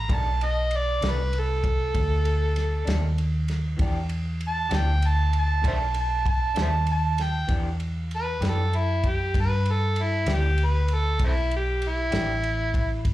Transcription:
0.00 0.16 A#5 medium
0.08 0.99 B1 medium
0.08 0.28 B2 medium
0.08 0.28 D#3 medium
0.08 0.28 A3 medium
0.08 0.28 D4 medium
0.08 kick loud
0.08 ride medium
0.14 0.47 A5 loud
0.41 ride medium
0.45 0.78 D#5 loud
0.71 ride medium
0.76 1.11 D5 loud
1.01 1.92 C2 medium
1.01 1.21 B2 medium
1.01 1.21 D#3 medium
1.01 1.21 A3 medium
1.01 1.20 D4 medium
1.01 snare loud
1.01 ride medium
1.09 1.41 B4 loud
1.33 ride medium
1.40 3.17 A4 loud
1.64 kick medium
1.64 ride medium
1.94 2.84 D2 medium
1.94 kick medium
1.94 ride medium
2.25 ride medium
2.56 snare soft
2.56 ride medium
2.85 3.77 D#2 loud
2.85 3.05 B2 medium
2.85 3.05 D#3 medium
2.85 3.05 A3 medium
2.85 3.04 D4 medium
2.85 snare loud
2.85 ride medium
3.18 ride medium
3.48 snare soft
3.48 ride medium
3.77 4.69 E2 medium
3.77 3.97 E3 medium
3.77 3.97 B3 medium
3.77 3.98 D4 medium
3.77 3.98 G4 medium
3.77 kick loud
3.77 ride medium
4.09 ride medium
4.41 ride medium
4.48 4.79 A5 loud
4.69 5.61 D2 medium
4.69 4.90 E3 medium
4.69 4.90 B3 medium
4.69 4.90 D4 medium
4.69 4.89 G4 medium
4.69 snare loud
4.69 ride medium
4.77 5.08 G5 loud
5.02 ride medium
5.07 5.35 A5 medium
5.33 ride medium
5.38 5.66 A5 medium
5.62 6.54 B1 medium
5.62 5.82 B2 medium
5.62 5.82 D#3 medium
5.62 5.82 A3 medium
5.62 5.83 D4 medium
5.62 kick medium
5.62 ride medium
5.68 5.75 C5 medium
5.68 5.77 E5 medium
5.68 5.96 A5 medium
5.94 ride medium
6.00 6.28 A5 medium
6.26 6.57 A5 loud
6.26 kick medium
6.26 ride medium
6.55 7.47 D#2 medium
6.55 6.75 B2 medium
6.55 6.75 D#3 medium
6.55 6.75 A3 medium
6.55 6.74 D4 medium
6.55 snare loud
6.55 ride medium
6.61 6.69 C5 medium
6.61 6.69 E5 medium
6.61 6.89 A5 medium
6.87 ride medium
6.92 7.24 A5 loud
7.18 7.50 G5 loud
7.18 snare soft
7.18 ride medium
7.47 8.39 E2 medium
7.47 7.67 E3 medium
7.47 7.67 B3 medium
7.47 7.68 D4 medium
7.47 7.68 G4 medium
7.47 kick loud
7.47 ride medium
7.80 ride medium
8.11 ride medium
8.16 8.44 B4 loud
8.41 9.32 F#2 medium
8.41 8.61 E3 medium
8.41 8.61 B3 medium
8.41 8.61 D4 medium
8.41 8.60 G4 medium
8.41 snare loud
8.41 ride medium
8.49 8.79 A4 medium
8.73 9.10 E4 medium
8.73 ride medium
9.04 kick medium
9.04 ride medium
9.08 9.36 G4 medium
9.34 10.25 G2 medium
9.34 kick medium
9.34 ride medium
9.41 9.73 B4 loud
9.66 ride medium
9.71 10.05 A4 medium
9.96 ride medium
10.03 10.30 E4 medium
10.26 11.17 D2 medium
10.26 10.47 E3 medium
10.26 10.46 B3 medium
10.26 10.46 D4 medium
10.26 10.46 G4 medium
10.26 snare loud
10.26 ride medium
10.34 10.67 G4 medium
10.58 ride medium
10.65 10.96 B4 medium
10.88 ride medium
10.94 11.22 A4 medium
11.19 12.10 B1 medium
11.19 kick loud
11.19 ride medium
11.24 11.31 A3 medium
11.24 11.32 C4 medium
11.24 11.52 E4 medium
11.51 ride medium
11.56 11.89 G4 medium
11.82 ride medium
11.88 13.05 E4 loud
12.11 13.03 A1 medium
12.11 12.32 E3 medium
12.11 12.31 B3 medium
12.11 12.31 D4 medium
12.11 12.30 G4 medium
12.11 snare loud
12.11 ride medium
12.44 ride medium
12.74 kick medium
12.74 ride medium
13.05 13.14 G1 medium
13.05 kick medium
13.05 ride medium

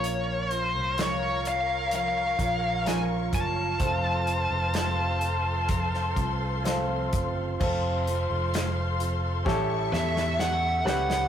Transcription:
0.00 0.75 A#1 medium
0.00 0.52 A#2 soft
0.00 0.95 A#2 medium
0.00 0.97 F3 medium
0.00 0.52 A#3 medium
0.00 0.51 C#4 medium
0.00 1.36 C#4 medium
0.00 0.50 F4 medium
0.00 1.36 F4 medium
0.00 1.36 A#4 medium
0.00 0.53 C#5 medium
0.00 closed hi-hat medium
0.04 3.76 A#4 medium
0.04 3.76 C#5 medium
0.04 7.57 F5 medium
0.04 3.76 C#6 medium
0.51 0.97 A#3 soft
0.51 0.98 C#4 soft
0.51 0.98 F4 soft
0.51 1.01 C5 medium
0.51 closed hi-hat medium
0.75 2.35 C2 medium
0.97 1.45 A#2 medium
0.97 1.45 F3 medium
0.97 1.45 A#3 medium
0.97 1.44 C#4 medium
0.97 1.43 F4 medium
0.97 snare medium
0.97 closed hi-hat medium
1.02 1.48 C#5 medium
1.44 1.91 A#3 soft
1.44 1.92 C#4 soft
1.44 1.92 F4 soft
1.44 closed hi-hat medium
1.48 1.91 F5 medium
1.91 2.39 F3 medium
1.91 2.39 A#3 medium
1.91 2.39 C#4 medium
1.91 2.37 F4 medium
1.91 closed hi-hat medium
1.95 2.90 F5 medium
2.38 3.29 A#1 medium
2.38 2.85 A#3 soft
2.38 2.86 C#4 soft
2.38 2.86 F4 medium
2.38 kick medium
2.38 closed hi-hat medium
2.85 3.79 A#2 medium
2.85 3.79 F3 medium
2.85 3.80 A#3 medium
2.85 3.75 C#4 medium
2.85 3.80 C#4 medium
2.85 3.75 F4 soft
2.85 3.81 F4 medium
2.85 3.75 A#4 medium
2.85 3.00 G#5 medium
2.85 snare medium
2.85 closed hi-hat medium
3.33 3.77 F#1 medium
3.33 6.62 A5 loud
3.33 kick medium
3.33 closed hi-hat medium
3.79 4.47 F1 medium
3.79 4.27 F2 medium
3.79 4.27 C3 medium
3.79 4.27 F3 medium
3.79 4.27 A3 medium
3.79 5.60 C4 medium
3.79 4.27 C4 medium
3.79 5.60 F4 medium
3.79 4.25 F4 medium
3.79 7.56 A4 medium
3.79 5.60 A4 medium
3.79 7.57 C5 medium
3.79 7.57 C6 medium
3.79 kick medium
3.79 closed hi-hat medium
4.26 4.73 F3 soft
4.26 4.74 A3 soft
4.26 4.74 C4 soft
4.26 4.74 F4 soft
4.26 closed hi-hat medium
4.50 6.13 F1 medium
4.74 5.22 F2 medium
4.74 5.22 C3 medium
4.74 5.22 F3 medium
4.74 5.22 A3 medium
4.74 5.21 C4 medium
4.74 5.20 F4 medium
4.74 snare medium
4.74 closed hi-hat medium
5.21 5.67 F3 soft
5.21 5.68 A3 soft
5.21 5.69 C4 soft
5.21 5.69 F4 medium
5.21 closed hi-hat medium
5.68 6.16 F3 medium
5.68 6.17 A3 medium
5.68 6.15 C4 medium
5.68 6.14 F4 medium
5.68 kick medium
5.68 closed hi-hat medium
5.94 snare soft
6.15 7.09 C2 medium
6.15 6.64 F3 medium
6.15 6.64 A3 soft
6.15 6.65 C4 medium
6.15 6.64 F4 medium
6.15 kick medium
6.15 closed hi-hat medium
6.64 7.59 F2 medium
6.64 7.59 C3 medium
6.64 7.60 F3 medium
6.64 7.61 A3 medium
6.64 7.55 C4 medium
6.64 7.60 C4 loud
6.64 7.56 F4 medium
6.64 7.61 F4 loud
6.64 7.56 A4 medium
6.64 snare medium
6.64 closed hi-hat medium
7.13 7.57 F#1 medium
7.13 kick medium
7.13 closed hi-hat medium
7.60 8.27 F1 medium
7.60 8.07 F2 medium
7.60 8.07 C3 medium
7.60 8.08 F3 medium
7.60 8.07 A3 medium
7.60 9.36 C4 medium
7.60 8.06 C4 medium
7.60 9.37 F4 medium
7.60 8.05 F4 medium
7.60 11.28 A4 medium
7.60 9.37 A4 medium
7.60 9.44 C5 medium
7.60 9.44 F5 medium
7.60 9.44 C6 medium
7.60 kick medium
7.60 crash medium
8.06 9.01 F3 soft
8.06 9.01 A3 medium
8.06 8.99 C4 medium
8.06 8.98 F4 medium
8.06 closed hi-hat medium
8.30 9.46 F1 medium
8.54 snare loud
8.54 closed hi-hat medium
8.99 9.46 F3 medium
8.99 9.46 A3 soft
8.99 9.46 C4 medium
8.99 9.46 F4 medium
8.99 closed hi-hat medium
9.45 9.89 A1 medium
9.45 9.92 A2 medium
9.45 10.82 A2 medium
9.45 9.92 E3 medium
9.45 9.93 G3 medium
9.45 10.78 C#4 medium
9.45 9.93 C#4 medium
9.45 9.92 E4 medium
9.45 10.79 G4 medium
9.45 11.28 G4 medium
9.45 10.79 A4 loud
9.45 9.91 A4 medium
9.45 11.28 E5 medium
9.45 11.28 C#6 medium
9.45 kick loud
9.45 snare medium
9.92 10.82 E2 loud
9.92 10.37 G3 medium
9.92 10.38 C#4 medium
9.92 10.39 E4 medium
9.92 10.39 A4 medium
9.92 10.41 E5 medium
9.92 snare medium
10.17 snare medium
10.38 10.86 G3 medium
10.38 10.86 C#4 medium
10.38 10.85 E4 medium
10.38 10.84 A4 medium
10.38 10.83 F#5 medium
10.38 snare medium
10.85 11.28 C#2 medium
10.85 11.28 G3 soft
10.85 11.28 C#4 medium
10.85 11.28 E4 medium
10.85 11.28 G4 medium
10.85 11.28 A4 medium
10.85 11.28 B4 medium
10.85 11.28 F#5 medium
10.85 snare medium
11.10 snare medium

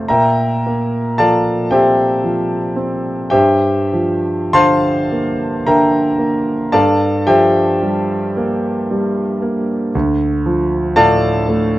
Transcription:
0.00 0.11 C3 soft
0.00 0.12 A3 soft
0.00 0.11 C5 soft
0.00 0.11 F5 soft
0.00 0.12 A5 soft
0.00 0.12 C6 medium
0.08 3.29 A#2 soft
0.08 1.14 A#4 medium
0.08 1.14 E5 medium
0.08 1.14 G5 medium
0.08 1.17 A#5 medium
0.66 1.51 A#3 soft
1.18 2.03 F3 soft
1.18 1.68 A4 medium
1.18 1.68 D5 medium
1.18 1.68 F5 medium
1.18 1.71 A5 medium
1.71 2.56 C4 soft
1.71 2.74 G4 soft
1.71 2.74 C5 soft
1.71 2.74 E5 soft
1.71 2.77 G5 medium
2.24 3.10 F3 soft
2.76 3.32 C4 soft
3.30 6.69 G2 soft
3.30 4.52 G4 medium
3.30 4.52 C5 medium
3.30 4.52 E5 medium
3.30 4.55 G5 medium
3.93 4.91 F3 soft
4.53 5.44 D3 soft
4.53 5.62 C5 medium
4.53 5.62 F5 medium
4.53 5.62 A5 medium
4.53 5.66 C6 loud
5.12 5.98 A#3 soft
5.67 6.53 D3 soft
5.67 6.70 A#4 medium
5.67 6.70 E5 medium
5.67 6.70 G5 medium
5.67 6.73 A#5 medium
6.19 6.73 A#3 soft
6.72 9.90 G2 soft
6.72 7.24 A4 medium
6.72 7.23 D5 medium
6.72 7.23 F5 medium
6.72 7.27 A5 medium
7.27 8.15 F3 soft
7.27 9.90 G4 medium
7.27 9.91 C5 medium
7.27 9.90 E5 medium
7.27 9.94 G5 medium
7.83 8.69 G3 soft
8.37 9.21 A#3 soft
8.91 9.74 G3 soft
9.42 9.94 A#3 soft
9.95 11.79 D2 medium
10.46 11.29 F3 soft
10.96 11.79 A2 soft
10.96 11.79 A4 medium
10.96 11.79 D5 medium
10.96 11.79 F5 medium
10.96 11.79 A5 medium
11.49 11.79 A3 soft

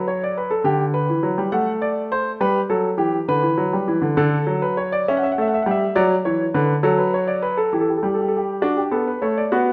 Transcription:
0.00 0.62 F#3 medium
0.08 0.21 C#5 medium
0.24 0.36 D5 medium
0.38 0.50 B4 medium
0.51 0.64 A4 medium
0.64 1.07 D3 medium
0.64 0.83 G4 medium
0.94 1.51 B4 medium
1.10 1.23 E3 medium
1.23 1.37 F#3 medium
1.38 1.52 G3 medium
1.52 2.38 A3 medium
1.52 1.70 F#5 medium
1.82 2.00 D5 medium
2.12 2.30 C5 medium
2.41 2.59 G3 medium
2.41 2.59 B4 medium
2.70 2.88 F#3 medium
2.70 2.88 A4 medium
2.98 3.16 E3 medium
2.98 3.17 G4 medium
3.28 3.43 D3 medium
3.28 4.15 B4 medium
3.43 3.57 E3 medium
3.57 3.72 F#3 medium
3.73 3.87 G3 medium
3.88 4.02 E3 medium
4.02 4.16 D3 medium
4.17 4.35 D3 medium
4.17 4.60 A4 medium
4.47 5.04 F#3 medium
4.62 4.76 B4 medium
4.77 4.91 C#5 medium
4.92 5.06 D5 medium
5.08 5.26 C#4 medium
5.08 5.15 E5 medium
5.17 5.23 F#5 medium
5.23 5.30 E5 medium
5.32 5.39 F#5 medium
5.38 5.55 A3 medium
5.38 5.47 E5 medium
5.48 5.55 F#5 medium
5.54 5.62 E5 medium
5.62 5.84 G3 medium
5.62 5.70 F#5 medium
5.71 5.94 E5 medium
5.95 6.14 F#3 loud
5.95 6.13 D5 medium
6.25 6.43 E3 medium
6.25 6.43 C#5 medium
6.54 6.73 D3 medium
6.54 6.73 B4 medium
6.83 7.70 F#3 medium
6.83 6.98 A4 medium
6.98 7.13 B4 medium
7.14 7.28 C#5 medium
7.28 7.42 D5 medium
7.42 7.57 B4 medium
7.57 7.72 A4 medium
7.73 7.91 E3 medium
7.73 7.81 G4 soft
7.80 7.88 A4 medium
7.88 7.97 G4 soft
7.97 8.05 A4 soft
8.03 8.61 G3 medium
8.03 8.13 G4 soft
8.14 8.22 A4 soft
8.21 8.29 G4 medium
8.28 8.37 A4 medium
8.37 8.61 G4 medium
8.62 8.81 D4 medium
8.62 8.77 F#4 medium
8.77 8.92 G4 medium
8.91 9.10 B3 medium
8.91 9.06 A4 medium
9.07 9.22 B4 medium
9.22 9.41 A3 medium
9.22 9.36 C#5 medium
9.37 9.52 D5 medium
9.52 9.73 B3 medium
9.52 9.70 F#4 medium

